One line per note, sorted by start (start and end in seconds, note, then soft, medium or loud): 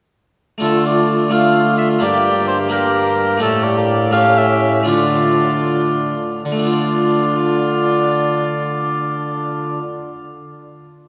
0.58 1.98 D3 soft
0.58 1.28 A3 soft
0.58 1.29 D4 soft
0.58 1.30 F4 soft
0.63 1.99 D3 medium
0.63 1.29 A3 medium
0.63 1.29 F4 medium
0.63 0.85 A4 medium
0.86 1.31 D5 medium
1.30 1.99 A3 soft
1.30 1.99 D4 soft
1.30 2.00 F4 soft
1.30 1.77 F5 medium
1.34 2.05 A3 medium
1.34 2.04 F4 medium
1.78 1.89 E5 medium
1.99 3.42 G2 medium
1.99 3.37 G2 soft
1.99 2.67 A#3 soft
1.99 2.68 D4 soft
1.99 2.69 G4 soft
1.99 2.47 D5 medium
2.03 2.71 A#3 medium
2.03 2.72 G4 medium
2.48 2.58 C5 medium
2.68 3.38 A#3 soft
2.68 3.43 A#3 medium
2.68 3.38 D4 soft
2.68 3.39 G4 soft
2.68 3.40 A#4 medium
2.72 3.40 G4 medium
3.37 4.86 A2 medium
3.37 4.83 A2 soft
3.37 4.09 A3 soft
3.37 3.79 A3 medium
3.37 4.09 D4 soft
3.37 4.10 G4 medium
3.42 4.12 G4 medium
3.42 3.65 A4 medium
3.64 4.12 D5 medium
3.77 4.16 A#3 medium
4.11 4.82 A3 soft
4.11 4.84 C#4 soft
4.11 4.87 C#4 medium
4.11 4.85 G4 soft
4.11 4.86 G4 medium
4.11 4.39 F5 loud
4.38 4.87 E5 medium
4.83 6.15 D3 medium
4.83 6.39 A3 soft
4.83 6.40 D4 soft
4.83 6.40 F4 soft
4.87 6.14 D3 soft
4.87 6.15 D4 medium
4.87 6.19 F4 medium
4.87 6.15 D5 medium
6.44 9.79 D3 medium
6.44 9.80 D3 soft
6.44 9.81 D4 medium
6.44 9.80 F4 medium
6.44 9.80 D5 medium
6.52 9.87 A3 soft
6.59 9.94 D4 soft
6.67 10.01 F4 soft
6.73 10.08 D5 soft